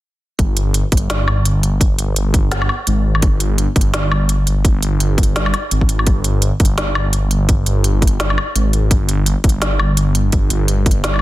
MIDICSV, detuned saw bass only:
0, 0, Header, 1, 2, 480
1, 0, Start_track
1, 0, Tempo, 355030
1, 523, Time_signature, 4, 2, 24, 8
1, 15167, End_track
2, 0, Start_track
2, 0, Title_t, "Detuned saw bass"
2, 0, Program_c, 0, 39
2, 526, Note_on_c, 0, 31, 93
2, 1125, Note_off_c, 0, 31, 0
2, 1246, Note_on_c, 0, 31, 85
2, 1712, Note_off_c, 0, 31, 0
2, 1726, Note_on_c, 0, 31, 90
2, 2671, Note_off_c, 0, 31, 0
2, 2683, Note_on_c, 0, 31, 96
2, 3150, Note_off_c, 0, 31, 0
2, 3162, Note_on_c, 0, 31, 86
2, 3630, Note_off_c, 0, 31, 0
2, 3883, Note_on_c, 0, 32, 89
2, 4350, Note_off_c, 0, 32, 0
2, 4362, Note_on_c, 0, 31, 96
2, 4964, Note_off_c, 0, 31, 0
2, 5083, Note_on_c, 0, 31, 86
2, 5550, Note_off_c, 0, 31, 0
2, 5561, Note_on_c, 0, 31, 92
2, 6509, Note_off_c, 0, 31, 0
2, 6525, Note_on_c, 0, 31, 94
2, 6991, Note_off_c, 0, 31, 0
2, 7002, Note_on_c, 0, 31, 87
2, 7470, Note_off_c, 0, 31, 0
2, 7726, Note_on_c, 0, 32, 90
2, 8191, Note_off_c, 0, 32, 0
2, 8204, Note_on_c, 0, 31, 96
2, 8804, Note_off_c, 0, 31, 0
2, 8925, Note_on_c, 0, 31, 84
2, 9391, Note_off_c, 0, 31, 0
2, 9403, Note_on_c, 0, 31, 92
2, 10350, Note_off_c, 0, 31, 0
2, 10365, Note_on_c, 0, 31, 93
2, 10831, Note_off_c, 0, 31, 0
2, 10845, Note_on_c, 0, 31, 88
2, 11311, Note_off_c, 0, 31, 0
2, 11564, Note_on_c, 0, 32, 91
2, 12031, Note_off_c, 0, 32, 0
2, 12046, Note_on_c, 0, 31, 96
2, 12645, Note_off_c, 0, 31, 0
2, 12765, Note_on_c, 0, 31, 87
2, 13231, Note_off_c, 0, 31, 0
2, 13248, Note_on_c, 0, 31, 94
2, 14192, Note_off_c, 0, 31, 0
2, 14203, Note_on_c, 0, 31, 98
2, 14670, Note_off_c, 0, 31, 0
2, 14684, Note_on_c, 0, 31, 88
2, 15150, Note_off_c, 0, 31, 0
2, 15167, End_track
0, 0, End_of_file